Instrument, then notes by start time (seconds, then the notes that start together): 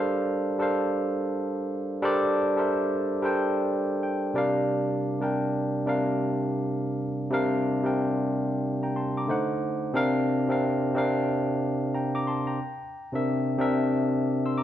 tine electric piano
Already playing: G3 D4 A4 A#4 C5 F5
0.58 G3 D4 A4 A#4 C5 F5
2.02 G3 D4 A4 A#4 C5 D5
2.56 G3 D4 A4 A#4 C5 E5
3.22 G3 D4 A4 A#4 C5 G5
4.03 G5
4.34 C3 G3 D4 A#4 D5
4.38 F5
5.19 C3 G3 D4 A#4
5.23 G5
5.86 C3 G3 D4 A#4 F5
7.30 C3 G3 D4 A#4 F5
7.83 C3 G3 D4 A#4 G5
8.83 G5 A#5
8.96 A5 C6
9.17 A#5 D6
9.27 D3 A3 D#4 C5 F#5
9.93 C3 C4 D4 A#4 F5
10.48 C3 C4 D4 A#4 F5
10.95 C3 C4 D4 A#4 F5
11.94 G5 A#5
12.15 A#5 D6
12.27 A5 C6
12.47 G5 A#5
13.12 C3 C4 D4 A#4 E5
13.58 C3 C4 D4 A#4 E5
14.46 C6 E6
14.58 A#5 D6